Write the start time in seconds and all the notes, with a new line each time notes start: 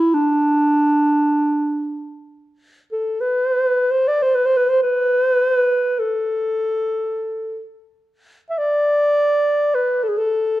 Already playing: E4
0.14 D4
2.92 A4
3.21 B4
3.91 C5
4.08 D5
4.22 C5
4.35 B4
4.46 C5
4.57 B4
4.69 C5
4.83 B4
5.99 A4
8.50 E5
8.58 D5
9.75 B4
10.03 A4
10.09 G#4
10.18 A4